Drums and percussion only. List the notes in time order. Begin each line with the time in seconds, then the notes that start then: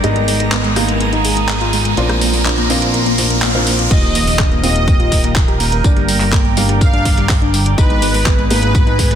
0.04 closed hi-hat
0.16 closed hi-hat
0.28 open hi-hat
0.40 closed hi-hat
0.52 clap, closed hi-hat
0.64 closed hi-hat
0.76 cross-stick, open hi-hat
0.88 closed hi-hat
1.00 closed hi-hat
1.13 closed hi-hat
1.25 open hi-hat
1.37 closed hi-hat
1.49 clap, closed hi-hat
1.61 closed hi-hat
1.73 open hi-hat
1.85 closed hi-hat
1.97 closed hi-hat
2.09 cross-stick, closed hi-hat
2.21 open hi-hat
2.34 open hi-hat
2.45 clap, closed hi-hat
2.58 closed hi-hat
2.70 open hi-hat
2.82 closed hi-hat
2.94 closed hi-hat
3.06 closed hi-hat
3.18 open hi-hat
3.30 closed hi-hat
3.42 clap, open hi-hat
3.55 closed hi-hat
3.67 open hi-hat
3.79 closed hi-hat
3.91 kick, closed hi-hat, crash, tambourine
4.03 closed hi-hat
4.15 open hi-hat, tambourine
4.27 open hi-hat
4.39 kick, cross-stick, snare, clap, closed hi-hat, tambourine
4.52 closed hi-hat
4.63 open hi-hat, tambourine
4.76 closed hi-hat
4.88 kick, closed hi-hat, tambourine
5.00 closed hi-hat
5.12 kick, snare, open hi-hat, tambourine
5.24 snare, closed hi-hat
5.36 kick, snare, clap, closed hi-hat, tambourine
5.48 closed hi-hat
5.60 snare, open hi-hat
5.72 closed hi-hat
5.84 kick, closed hi-hat, tambourine
5.97 snare, closed hi-hat
6.08 open hi-hat, tambourine
6.20 clap, open hi-hat
6.33 kick, cross-stick, snare, clap, closed hi-hat, tambourine
6.45 closed hi-hat
6.57 open hi-hat, tambourine
6.69 snare, closed hi-hat
6.81 kick, closed hi-hat, tambourine
6.93 closed hi-hat
7.05 kick, snare, open hi-hat, tambourine
7.18 snare, closed hi-hat
7.29 kick, snare, clap, open hi-hat, tambourine
7.42 closed hi-hat
7.54 open hi-hat, tambourine
7.66 closed hi-hat
7.78 kick, closed hi-hat, tambourine
7.90 closed hi-hat
8.02 open hi-hat, tambourine
8.14 open hi-hat
8.26 kick, cross-stick, snare, clap, tambourine
8.39 closed hi-hat
8.51 open hi-hat, tambourine
8.63 closed hi-hat
8.75 kick, closed hi-hat, tambourine
8.87 closed hi-hat
8.99 kick, snare, open hi-hat, tambourine
9.11 snare, closed hi-hat